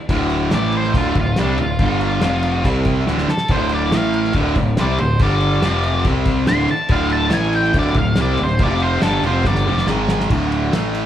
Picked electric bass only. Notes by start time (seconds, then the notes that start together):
0.09 D1
0.52 A1
0.94 D1
1.15 D1
1.39 C2
1.59 D1
1.79 G1
2.21 F1
2.64 C2
3.07 D1
3.28 muted picked electric bass stroke
3.50 D1
3.91 A1
4.35 D1
4.56 D1
4.78 C2
5.00 D1
5.20 G1
5.62 F1
6.05 C2
6.48 D1
6.68 muted picked electric bass stroke
6.90 D1
7.33 A1
7.75 D1
7.95 D1
8.17 C2
8.38 D1
8.59 F1
9.01 G1
9.22 F1
9.45 G1
9.66 F1
9.87 G#1
10.30 D1
10.72 A1